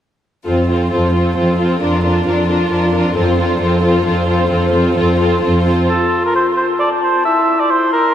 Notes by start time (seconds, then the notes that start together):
0.44 F2 C4 F4 A4
0.68 C4 F4 A4
0.90 F2 C4 F4 A4
1.13 C4 F4 A4
1.35 F2 C4 F4 A4
1.58 C4 F4 A4
1.81 F2 D4 F4 A#4
2.04 D4 F4 A#4
2.25 F2 D4 F4 A#4
2.49 D4 F4 A#4
2.71 F2 D4 F4 A#4
2.93 D4 F4 A#4
3.15 F2 C4 F4 A4
3.37 C4 F4 A4
3.61 F2 C4 F4 A4
3.82 C4 F4 A4
4.05 F2 C4 F4 A4
4.27 C4 F4 A4
4.50 F2 C4 F4 A4
4.72 C4 F4 A4
4.96 F2 C4 F4 A4
5.18 C4 F4 A4
5.41 F2 C4 F4 A4
5.65 C4 F4 A4
5.89 F4 A4 C6
6.25 A#4
6.36 C5
6.57 C5
6.79 D5 A5
7.02 C5
7.25 E4 E5
7.60 D5
7.70 C5 C6
7.93 A#4